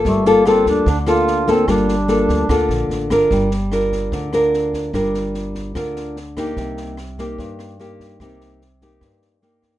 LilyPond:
<<
  \new Staff \with { instrumentName = "Nylon-string guitar" } { \time 4/4 \key g \minor \tempo 4 = 147 << { <bes f' a'>8 <bes f' a'>8 <bes f' a'>4 r8 <bes f' a'>4 <bes f' a'>8 | <bes f' a'>8 r8 <bes f' a'>4 <bes f' a'>4. <d' f' bes'>8~ | <d' f' bes'>8 r8 <d' f' bes'>4. <d' f' bes'>4. | <d' f' bes'>2 <d' f' bes'>4 r8 <bes ees' g'>8~ |
<bes ees' g'>4 r8 <bes ees' g'>4. <bes ees' g'>4 | <bes ees' g'>4 r8 <bes ees' g'>4. <bes ees' g'>4 | } \\ { g2 d2 | g2 d2 | g2 d2 | g2 d2 |
c2 g,2 | c2 g,2 | } >> }
  \new Staff \with { instrumentName = "Duduk" } { \time 4/4 \key g \minor a8 bes8 c'8 d'8 d'8 f'4 c'8 | d'2. r4 | r1 | r1 |
r1 | r1 | }
  \new Staff \with { instrumentName = "Upright bass" } { \clef bass \time 4/4 \key g \minor g,,4. d,8 d,2 | g,,4. d,8 d,8 bes,,8 a,,8 g,,8 | g,,2 d,2 | g,,2 d,2 |
c,2 g,2 | c,2 g,2 | }
  \new DrumStaff \with { instrumentName = "Drums" } \drummode { \time 4/4 <bd sn>8 sn8 <ss sn>8 <bd sn>8 <bd sn>8 <ss sn>8 sn8 <bd sn>8 | <bd ss sn>8 sn8 sn8 <bd sn>8 <bd ss sn>8 sn8 sn8 <bd ss sn>8 | <bd sn>8 sn8 <ss sn>8 <bd sn>8 <bd sn>8 <ss sn>8 sn8 <bd sn>8 | <bd ss sn>8 sn8 sn8 <bd sn>8 <bd ss sn>8 sn8 sn8 <bd ss sn>8 |
<bd sn>8 sn8 <ss sn>8 <bd sn>8 <bd sn>8 <ss sn>8 sn8 <bd sn>8 | <bd ss sn>8 sn8 sn8 <bd sn>8 <bd ss sn>8 sn8 sn8 <ss sn>8 | }
>>